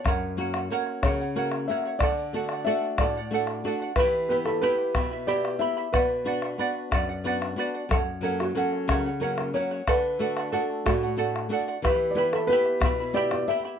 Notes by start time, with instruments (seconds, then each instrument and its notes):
Already playing: felt piano C#5
0.04 nylon-string guitar F#2, charango A#4 C#5 F#5, bombo rim, bombo low
0.37 nylon-string guitar A#3 C#4 F#4, charango A#4 C#5 F#5
0.54 charango C#5 F#5, bombo rim
0.70 nylon-string guitar A#3 C#4 F#4, charango A#4 C#5 F#5
0.86 bombo rim
1.03 nylon-string guitar C#3, charango A#4 C#5 F#5, felt piano C#5, bombo rim, bombo low
1.21 charango C#5 F#5
1.35 nylon-string guitar A#3 C#4 F#4, charango A#4 C#5 F#5
1.52 bombo rim
1.68 nylon-string guitar A#3 C#4 F#4, charango A#4 C#5 F#5, felt piano E5
1.84 charango C#5 F#5, bombo rim
1.99 nylon-string guitar D3, charango A4 D5 F#5, felt piano D5, bombo rim, bombo low
2.33 nylon-string guitar A3 D4 F#4, charango A4 D5 F#5
2.49 charango F#5, bombo rim
2.54 charango D5
2.65 nylon-string guitar A3 D4 F#4, charango A4 D5 F#5, felt piano E5
2.82 bombo rim
2.98 nylon-string guitar A2, charango A4 D5 F#5, felt piano D5, bombo rim, bombo low
3.17 charango D5 F#5
3.31 nylon-string guitar A3 D4 F#4, charango A4 D5 F#5
3.47 bombo rim
3.64 nylon-string guitar A3 D4 F#4, charango A4 D5 F#5
3.80 charango D5 F#5, bombo rim
3.96 nylon-string guitar E3, charango E4 G4 E5 G5, felt piano B4, bombo rim, bombo low
4.00 charango B5
4.29 nylon-string guitar B3 E4 G4, charango E4 E5 G5 B5, felt piano B4
4.45 charango E4 E5 B5, felt piano A4, bombo rim
4.62 nylon-string guitar B3 E4 G4, charango E4 G4 E5 G5 B5, felt piano B4
4.78 bombo rim
4.95 nylon-string guitar B2, charango E4 E5 G5 B5, bombo rim, bombo low
5.11 charango E4 E5 B5
5.27 nylon-string guitar B3 E4 G4, charango E4 G4 E5 G5 B5, felt piano D5
5.45 bombo rim
5.59 nylon-string guitar B3 E4 G4, charango E4 E5 G5 B5, felt piano E5
5.77 charango E4 E5 B5, bombo rim
5.92 nylon-string guitar B2, felt piano B4, charango B4 D5 F#5, bombo rim, bombo low
6.10 bombo rim
6.25 nylon-string guitar B3 D4 F#4, charango B4 D5 F#5, bombo rim
6.42 charango D5 F#5, bombo rim
6.58 nylon-string guitar B3 D4 F#4, charango B4 D5 F#5
6.75 bombo rim
6.91 nylon-string guitar F#2, charango B4 D5 F#5, bombo rim, bombo low
7.09 charango D5 F#5
7.24 nylon-string guitar B3 D4 F#4, charango B4 D5 F#5, bombo rim
7.42 bombo rim
7.56 nylon-string guitar B3 D4 F#4, charango B4 D5 F#5, bombo rim
7.74 charango D5 F#5
7.89 nylon-string guitar F#2, felt piano A4, charango C#5 F#5, bombo rim, bombo low
8.21 nylon-string guitar F#3 A#3 C#4, felt piano A4, charango A#4 C#5 F#5
8.40 felt piano F#4, charango C#5 F#5, bombo rim
8.55 nylon-string guitar F#3 A#3 C#4, felt piano A4, charango C#5 F#5
8.73 bombo rim
8.88 nylon-string guitar C#3, charango A#4 C#5 F#5, bombo rim, bombo low
9.06 charango C#5 F#5
9.20 nylon-string guitar F#3 A#3 C#4, felt piano A#4, charango A#4 C#5 F#5
9.38 felt piano A#4, bombo rim
9.54 nylon-string guitar F#3 A#3 C#4, charango A#4 C#5 F#5, felt piano C#5
9.71 charango C#5 F#5, bombo rim
9.87 nylon-string guitar D3, charango A4 D5 F#5, felt piano B4, bombo rim, bombo low
10.19 nylon-string guitar A3 D4 F#4, charango A4 D5 F#5
10.37 charango D5 F#5, bombo rim
10.52 nylon-string guitar A3 D4 F#4, charango A4 D5 F#5, felt piano A4
10.70 bombo rim
10.86 nylon-string guitar A2, felt piano F#4, charango A4 D5 F#5, bombo rim, bombo low
11.03 charango D5 F#5
11.17 nylon-string guitar A3 D4 F#4, charango A4 D5 F#5
11.36 bombo rim
11.49 nylon-string guitar A3 D4 F#4, charango A4 D5 F#5
11.68 charango D5 F#5, bombo rim
11.82 nylon-string guitar E3, charango E4 G4 E5 G5 B5, felt piano B4, bombo rim, bombo low
12.11 felt piano D5
12.15 nylon-string guitar B3 E4 G4, charango E4 E5 G5 B5, felt piano B4
12.33 charango E4 E5 B5, felt piano A4, bombo rim
12.47 nylon-string guitar B3 E4 G4, felt piano B4
12.52 charango E4 G4 E5 G5 B5
12.66 bombo rim
12.80 nylon-string guitar B2, bombo rim, bombo low
12.85 charango E4 E5 G5 B5
13.00 charango E4 E5 B5
13.13 nylon-string guitar B3 E4 G4, charango E4 G4 E5 G5 B5, felt piano D5
13.31 felt piano D5, bombo rim
13.48 nylon-string guitar B3 E4 G4, charango E4 E5 G5 B5, felt piano E5
13.65 charango E4 E5 B5, bombo rim